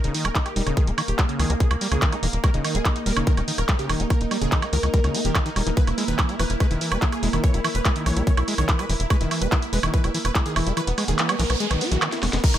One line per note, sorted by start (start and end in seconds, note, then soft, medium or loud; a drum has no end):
0.00 12.44 A#3 medium
0.00 12.44 A#4 medium
0.04 0.10 D#1 medium
0.04 0.14 C#3 medium
0.04 0.09 D#4 medium
0.04 closed hi-hat medium
0.14 0.26 D#3 medium
0.14 0.19 D#4 medium
0.14 open hi-hat loud
0.25 0.31 D#1 medium
0.25 0.29 A#3 medium
0.25 0.29 A#4 medium
0.25 closed hi-hat medium
0.25 high woodblock medium
0.35 0.39 D#3 loud
0.35 0.40 D#4 medium
0.35 kick loud
0.35 clap loud
0.35 closed hi-hat medium
0.46 0.50 G4 medium
0.46 closed hi-hat medium
0.46 high woodblock soft
0.56 0.62 D#1 medium
0.56 0.63 G3 loud
0.56 0.61 D#4 medium
0.56 open hi-hat loud
0.67 0.72 D#1 medium
0.67 0.76 C#3 medium
0.67 0.71 D#4 medium
0.67 closed hi-hat medium
0.67 high woodblock soft
0.77 0.89 D#3 medium
0.77 0.82 G#4 loud
0.77 kick loud
0.77 closed hi-hat medium
0.87 0.93 D#1 medium
0.87 0.91 A#3 medium
0.87 0.92 A#3 medium
0.87 closed hi-hat medium
0.98 1.02 D#3 loud
0.98 1.02 A#3 medium
0.98 open hi-hat loud
0.98 high woodblock medium
1.08 1.14 D#1 medium
1.08 1.13 G4 medium
1.08 closed hi-hat medium
1.19 1.25 G3 loud
1.19 1.23 A#3 medium
1.19 kick loud
1.19 clap loud
1.19 closed hi-hat medium
1.19 high woodblock soft
1.29 1.39 C#3 medium
1.29 1.34 A#3 medium
1.29 closed hi-hat medium
1.39 1.45 C#2 loud
1.39 1.51 D#3 medium
1.39 1.44 G#4 medium
1.39 open hi-hat loud
1.39 high woodblock soft
1.50 1.56 C#2 medium
1.50 1.54 A#3 medium
1.50 closed hi-hat medium
1.60 1.64 D#3 loud
1.60 1.65 G#4 loud
1.60 kick loud
1.60 closed hi-hat medium
1.71 1.77 C#2 medium
1.71 1.75 A#3 medium
1.71 closed hi-hat medium
1.71 high woodblock medium
1.81 1.88 G3 loud
1.81 1.86 A#3 medium
1.81 open hi-hat loud
1.92 1.97 C#2 medium
1.92 2.01 C#3 medium
1.92 1.96 G#4 medium
1.92 closed hi-hat medium
1.92 high woodblock soft
2.02 2.14 D#3 medium
2.02 2.07 A#3 medium
2.02 kick loud
2.02 clap loud
2.02 closed hi-hat medium
2.12 2.16 A#3 medium
2.12 2.17 D#4 medium
2.12 closed hi-hat medium
2.12 high woodblock soft
2.23 2.29 D#1 medium
2.23 2.27 D#3 loud
2.23 2.27 A#3 medium
2.23 open hi-hat loud
2.33 2.39 D#1 medium
2.33 2.38 A#3 medium
2.33 closed hi-hat medium
2.44 2.50 G3 loud
2.44 2.48 A#4 loud
2.44 kick loud
2.44 closed hi-hat medium
2.44 high woodblock medium
2.54 2.60 D#1 medium
2.54 2.64 C#3 medium
2.54 2.59 D#4 medium
2.54 closed hi-hat medium
2.64 2.76 D#3 medium
2.64 2.69 D#4 medium
2.64 open hi-hat loud
2.64 high woodblock soft
2.75 2.81 D#1 medium
2.75 2.79 A#3 medium
2.75 2.79 G#4 loud
2.75 closed hi-hat medium
2.85 2.89 D#3 loud
2.85 2.90 D#4 medium
2.85 kick loud
2.85 clap loud
2.85 closed hi-hat medium
2.85 high woodblock soft
2.96 3.00 D#4 medium
2.96 closed hi-hat medium
3.06 3.12 D#1 loud
3.06 3.13 G3 loud
3.06 3.11 A#4 medium
3.06 open hi-hat loud
3.17 3.22 D#1 medium
3.17 3.26 C#3 medium
3.17 3.21 D#4 medium
3.17 closed hi-hat medium
3.17 high woodblock medium
3.27 3.39 D#3 medium
3.27 3.32 A#4 loud
3.27 kick loud
3.27 closed hi-hat medium
3.37 3.43 D#1 medium
3.37 3.41 A#3 medium
3.37 3.42 D#4 medium
3.37 closed hi-hat medium
3.37 high woodblock soft
3.48 3.52 D#3 loud
3.48 3.52 D#4 medium
3.48 open hi-hat loud
3.58 3.64 D#1 medium
3.58 3.63 A#4 medium
3.58 closed hi-hat medium
3.58 high woodblock soft
3.69 3.75 G3 loud
3.69 3.73 D#4 medium
3.69 kick loud
3.69 clap loud
3.69 closed hi-hat medium
3.79 3.89 C#3 medium
3.79 3.84 G4 loud
3.79 closed hi-hat medium
3.89 3.95 D#1 loud
3.89 4.01 D#3 medium
3.89 3.94 D#4 medium
3.89 open hi-hat loud
3.89 high woodblock medium
4.00 4.06 D#1 medium
4.00 4.04 A#3 medium
4.00 4.04 D#4 medium
4.00 closed hi-hat medium
4.10 4.14 D#3 loud
4.10 4.15 A#4 loud
4.10 kick loud
4.10 closed hi-hat medium
4.10 high woodblock soft
4.21 4.27 D#1 medium
4.21 4.25 D#4 medium
4.21 closed hi-hat medium
4.31 4.38 G3 loud
4.31 4.36 D#4 medium
4.31 open hi-hat loud
4.31 high woodblock soft
4.42 4.47 D#1 medium
4.42 4.51 C#3 medium
4.42 4.46 G#4 loud
4.42 closed hi-hat medium
4.52 4.64 D#3 medium
4.52 4.57 D#4 medium
4.52 kick loud
4.52 clap loud
4.52 closed hi-hat medium
4.62 4.66 A#3 medium
4.62 4.67 D#4 medium
4.62 closed hi-hat medium
4.62 high woodblock medium
4.73 4.79 C#2 loud
4.73 4.77 D#3 loud
4.73 4.77 A#4 medium
4.73 open hi-hat loud
4.83 4.89 C#2 medium
4.83 4.88 D#4 medium
4.83 closed hi-hat medium
4.83 high woodblock soft
4.94 5.00 G3 loud
4.94 4.98 A#4 medium
4.94 kick loud
4.94 closed hi-hat medium
5.04 5.10 C#2 medium
5.04 5.16 C#3 medium
5.04 5.09 D#4 medium
5.04 closed hi-hat medium
5.04 high woodblock soft
5.14 5.21 A#3 medium
5.14 5.19 D#4 medium
5.14 open hi-hat loud
5.25 5.31 D#1 medium
5.25 5.35 D#3 medium
5.25 5.29 G4 medium
5.25 closed hi-hat medium
5.35 5.40 D#4 medium
5.35 kick loud
5.35 clap loud
5.35 closed hi-hat medium
5.35 high woodblock medium
5.46 5.50 D#3 loud
5.46 5.50 D#4 loud
5.46 closed hi-hat medium
5.56 5.62 D#1 loud
5.56 5.63 G3 medium
5.56 5.61 D#4 medium
5.56 open hi-hat loud
5.56 high woodblock soft
5.67 5.72 D#1 medium
5.67 5.70 E3 medium
5.67 5.71 D#4 medium
5.67 closed hi-hat medium
5.77 5.81 E3 loud
5.77 5.82 B4 loud
5.77 kick loud
5.77 closed hi-hat medium
5.87 5.93 E1 medium
5.87 5.92 E4 medium
5.87 closed hi-hat medium
5.87 high woodblock soft
5.98 6.04 G#3 loud
5.98 6.02 E4 medium
5.98 open hi-hat loud
6.08 6.14 E1 medium
6.08 6.18 D#3 medium
6.08 6.13 B4 medium
6.08 closed hi-hat medium
6.19 6.31 E3 medium
6.19 6.23 E4 medium
6.19 kick loud
6.19 clap loud
6.19 closed hi-hat medium
6.19 high woodblock medium
6.29 6.35 G#3 loud
6.29 6.34 E4 medium
6.29 closed hi-hat medium
6.39 6.45 E1 loud
6.39 6.43 E3 loud
6.39 6.44 B4 medium
6.39 open hi-hat loud
6.39 high woodblock soft
6.50 6.56 E1 medium
6.50 6.54 E4 medium
6.50 closed hi-hat medium
6.60 6.67 G#3 loud
6.60 6.65 B4 medium
6.60 kick loud
6.60 closed hi-hat medium
6.60 high woodblock soft
6.71 6.76 E1 medium
6.71 6.80 D#3 medium
6.71 6.75 E4 medium
6.71 closed hi-hat medium
6.81 6.93 E3 medium
6.81 6.86 E4 medium
6.81 open hi-hat loud
6.91 6.97 E1 medium
6.91 6.98 G#3 loud
6.91 6.96 B4 medium
6.91 closed hi-hat medium
6.91 high woodblock medium
7.02 7.06 E3 loud
7.02 7.06 E4 medium
7.02 kick loud
7.02 clap loud
7.02 closed hi-hat medium
7.12 7.17 G#4 medium
7.12 closed hi-hat medium
7.12 high woodblock soft
7.23 7.29 E1 loud
7.23 7.29 G#3 loud
7.23 7.27 E4 medium
7.23 open hi-hat loud
7.33 7.39 E1 medium
7.33 7.43 D#3 medium
7.33 7.38 E4 medium
7.33 closed hi-hat medium
7.33 high woodblock soft
7.44 7.56 E3 medium
7.44 7.48 C#5 loud
7.44 kick loud
7.44 closed hi-hat medium
7.54 7.60 E1 medium
7.54 7.60 G#3 loud
7.54 7.59 E4 medium
7.54 closed hi-hat medium
7.64 7.68 E3 loud
7.64 7.69 E4 medium
7.64 open hi-hat loud
7.64 high woodblock medium
7.75 7.81 E1 medium
7.75 7.79 B4 medium
7.75 closed hi-hat medium
7.85 7.92 G#3 loud
7.85 7.90 E4 medium
7.85 kick loud
7.85 clap loud
7.85 closed hi-hat medium
7.85 high woodblock soft
7.96 8.05 D#3 medium
7.96 8.00 E4 medium
7.96 closed hi-hat medium
8.06 8.12 B1 loud
8.06 8.18 E3 medium
8.06 8.11 C#5 medium
8.06 open hi-hat loud
8.06 high woodblock soft
8.17 8.22 B1 medium
8.17 8.23 G#3 medium
8.17 8.21 E4 medium
8.17 closed hi-hat medium
8.27 8.31 E3 loud
8.27 8.32 C#5 loud
8.27 kick loud
8.27 closed hi-hat medium
8.37 8.43 B1 medium
8.37 8.42 E4 medium
8.37 closed hi-hat medium
8.37 high woodblock medium
8.48 8.54 G#3 loud
8.48 8.52 E4 medium
8.48 open hi-hat loud
8.58 8.64 B1 medium
8.58 8.68 D#3 medium
8.58 8.63 C#5 medium
8.58 closed hi-hat medium
8.58 high woodblock soft
8.69 8.81 E3 medium
8.69 8.73 E4 medium
8.69 kick loud
8.69 clap loud
8.69 closed hi-hat medium
8.79 8.85 G#3 loud
8.79 8.84 B4 loud
8.79 closed hi-hat medium
8.79 high woodblock soft
8.89 8.95 E1 medium
8.89 8.93 E3 loud
8.89 8.94 E4 medium
8.89 open hi-hat loud
9.00 9.06 E1 medium
9.00 9.04 E4 medium
9.00 closed hi-hat medium
9.10 9.17 G#3 loud
9.10 9.15 B4 loud
9.10 kick loud
9.10 closed hi-hat medium
9.10 high woodblock medium
9.21 9.26 E1 medium
9.21 9.30 D#3 medium
9.21 9.25 E4 medium
9.21 closed hi-hat medium
9.31 9.43 E3 medium
9.31 9.36 E4 medium
9.31 open hi-hat loud
9.31 high woodblock soft
9.42 9.47 E1 medium
9.42 9.48 G#3 loud
9.42 9.46 B4 medium
9.42 closed hi-hat medium
9.52 9.56 E3 loud
9.52 9.57 E4 medium
9.52 kick loud
9.52 clap loud
9.52 closed hi-hat medium
9.52 high woodblock soft
9.62 9.67 E4 medium
9.62 closed hi-hat medium
9.73 9.79 E1 loud
9.73 9.79 G#3 loud
9.73 9.77 B4 medium
9.73 open hi-hat loud
9.83 9.89 E1 medium
9.83 9.93 D#3 medium
9.83 9.88 E4 medium
9.83 closed hi-hat medium
9.83 high woodblock medium
9.94 10.06 E3 medium
9.94 9.98 B4 loud
9.94 kick loud
9.94 closed hi-hat medium
10.04 10.10 E1 medium
10.04 10.10 G#3 loud
10.04 10.09 E4 medium
10.04 closed hi-hat medium
10.04 high woodblock soft
10.14 10.18 E3 loud
10.14 10.19 E4 medium
10.14 open hi-hat loud
10.25 10.31 E1 medium
10.25 10.29 B4 medium
10.25 closed hi-hat medium
10.25 high woodblock soft
10.35 10.42 G#3 loud
10.35 10.40 E4 medium
10.35 kick loud
10.35 clap loud
10.35 closed hi-hat medium
10.46 10.55 D#3 medium
10.46 10.50 G#4 loud
10.46 closed hi-hat medium
10.56 10.62 E1 loud
10.56 10.68 E3 medium
10.56 10.61 E4 medium
10.56 open hi-hat loud
10.56 high woodblock medium
10.67 10.72 E1 medium
10.67 10.73 G#3 loud
10.67 10.71 E4 medium
10.67 closed hi-hat medium
10.77 10.81 E3 loud
10.77 10.82 B4 loud
10.77 closed hi-hat medium
10.77 noise sweep medium
10.77 high woodblock soft
10.87 10.93 E1 medium
10.87 10.92 B3 medium
10.87 closed hi-hat medium
10.98 11.04 G#3 loud
10.98 11.02 B3 medium
10.98 open hi-hat loud
10.98 high woodblock soft
11.08 11.14 E1 medium
11.08 11.18 D#3 medium
11.08 11.13 G#4 medium
11.08 closed hi-hat medium
11.19 11.31 E3 medium
11.19 11.23 B3 medium
11.19 clap loud
11.19 closed hi-hat medium
11.29 11.35 G#3 loud
11.29 11.34 B3 medium
11.29 closed hi-hat medium
11.29 high woodblock medium
11.39 11.45 B1 loud
11.39 11.43 E3 loud
11.39 11.44 A#4 medium
11.39 clap soft
11.39 open hi-hat loud
11.50 11.56 B1 medium
11.50 11.54 B3 medium
11.50 closed hi-hat medium
11.50 high woodblock soft
11.60 11.67 G#3 loud
11.60 11.65 G#4 loud
11.60 closed hi-hat medium
11.71 11.76 B1 medium
11.71 11.83 D#3 medium
11.71 11.75 B3 medium
11.71 closed hi-hat medium
11.71 high woodblock soft
11.81 11.86 B3 medium
11.81 11.91 F#4 loud
11.81 open hi-hat loud
11.92 11.97 B1 medium
11.92 11.98 E3 medium
11.92 11.96 F#4 medium
11.92 closed hi-hat medium
12.02 12.08 D#3 medium
12.02 12.07 B3 medium
12.02 clap loud
12.02 closed hi-hat medium
12.02 high woodblock medium
12.12 12.17 E4 loud
12.12 snare medium
12.12 closed hi-hat medium
12.23 12.29 E1 loud
12.23 12.27 G#3 medium
12.23 12.27 B3 medium
12.23 snare medium
12.23 open hi-hat loud
12.23 high woodblock soft
12.33 12.39 E1 medium
12.33 12.37 G#3 medium
12.33 12.38 B3 medium
12.33 snare medium
12.33 closed hi-hat medium
12.44 12.48 D#3 loud
12.44 12.48 A#4 loud
12.44 kick loud
12.44 closed hi-hat medium
12.44 crash loud
12.44 downlifter medium
12.54 12.58 D#1 medium
12.54 12.58 D#4 medium
12.54 closed hi-hat medium
12.54 high woodblock soft